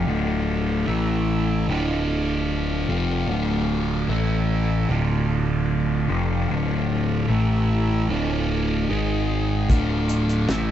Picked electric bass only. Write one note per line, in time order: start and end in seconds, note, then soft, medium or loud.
0.07 0.83 D1 medium
0.87 1.64 A1 medium
1.68 2.84 D1 medium
2.89 3.26 F1 medium
3.28 4.04 D1 medium
4.08 4.84 A1 medium
4.89 6.05 D1 medium
6.09 6.46 F1 medium
6.48 7.25 D1 medium
7.29 8.05 A1 medium
8.09 8.85 D1 medium
8.90 9.66 G#1 medium
9.70 10.46 D1 medium
10.49 10.71 A1 medium